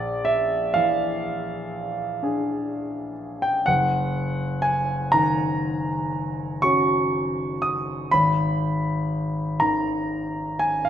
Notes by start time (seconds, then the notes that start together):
Already playing: A#1 D5
0.25 E5
0.74 E3 F5
2.23 D4 G#4
3.42 G5
3.66 F#1 F#5
4.62 G#5
5.12 D#3 A#5
6.62 C#4 F#4 C#6
7.62 D#6
8.11 G#1 B5
9.60 D#3 A#5
10.59 G#5
10.85 F5